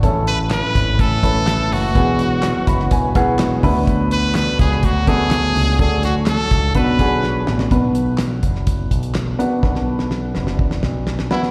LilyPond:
<<
  \new Staff \with { instrumentName = "Trumpet" } { \time 4/4 \key b \dorian \tempo 4 = 125 r8 b'8 b'4 a'4. fis'8~ | fis'2~ fis'8 r4. | r8 b'8 b'8 gis'8 fis'8 gis'4. | gis'8 fis'8 a'4 b'4. r8 |
r1 | r2. r8 e'8 | }
  \new Staff \with { instrumentName = "Upright piano" } { \time 4/4 \key b \dorian << { r1 | r4. b''8 gis''4 fis''8 e''8 | r1 | r1 |
r1 | r1 | } \\ { <a cis' e' a'>4. r4 <a cis' e' b'>4 r8 | <b e' fis' gis'>4. r4 <b e' fis' gis'>4 <b d' fis' b'>8~ | <b d' fis' b'>4 r4. <a b d' fis'>4 r8 | <a d' fis' a'>4. r8 <b d' fis' b'>8 <b d' fis' gis'>4 r8 |
<b d' fis' b'>4. r2 <b d' fis' b'>8 | <b d' fis' b'>4. r2 <b d' fis' b'>8 | } >> }
  \new Staff \with { instrumentName = "Upright piano" } { \clef bass \time 4/4 \key b \dorian a,4. r2 r8 | e4. r2 d8~ | d4 r2. | d4. r8 b,4. r8 |
b,4. r2 r8 | b,4. r2 r8 | }
  \new Staff \with { instrumentName = "Tonewheel organ" } { \time 4/4 \key b \dorian e'1 | fis'1~ | fis'1~ | fis'2 fis'2 |
r1 | r1 | }
  \new Staff \with { instrumentName = "Tonewheel organ" } { \clef bass \time 4/4 \key b \dorian << { <cis cis'>1 | <fis b>2.~ <fis b>8 <d d'>8~ | <d d'>1 | <d d'>1 |
r1 | r1 | } \\ { <a, e>1 | gis2.~ gis8 b,8~ | b,1 | <a, fis>2 <b, fis>2 |
r1 | r1 | } >> }
  \new Staff \with { instrumentName = "Picked electric bass" } { \clef bass \time 4/4 \key b \dorian a,,4~ a,,16 r16 gis,,8 a,,4. fis,,8 | e,,4~ e,,16 r16 fis,,8 e,,4. d,8~ | d,4~ d,16 r16 cis,8 d,4. cis,8 | d,4~ d,16 r16 cis,8 b,,4. a,,8 |
b,,4. fis,,4 b,,4 r8 | b,,4. fis,,4 b,,4 r8 | }
  \new DrumStaff \with { instrumentName = "Drums" } \drummode { \time 4/4 <hh bd>8 hh8 <hc hh sn>8 <hh bd>8 <hh bd>8 <hh bd>8 <hc hh sn>8 hho8 | <hh bd>8 hh8 <hc hh sn>8 <hh bd>16 sn16 <hh bd>8 <hh bd>8 <hc hh sn>8 <hho bd>8 | <hh bd>8 hh8 <hc hh sn>8 <hh bd>16 sn16 <hh bd>8 <hh bd>8 <hc hh sn>8 hho8 | <hh bd>8 hh8 <hc hh sn>8 <hh bd>8 <hh bd>8 <hh bd>8 sn8 sn16 sn16 |
<hh bd>8 hh8 <hc hh sn>8 <hh bd>16 sn16 <hh bd>8 <hh bd>16 hh16 <hc hh sn>8 hh8 | <bd sn>16 sn8 sn16 sn8 sn16 sn16 bd16 sn16 sn8 sn16 sn16 sn16 sn16 | }
>>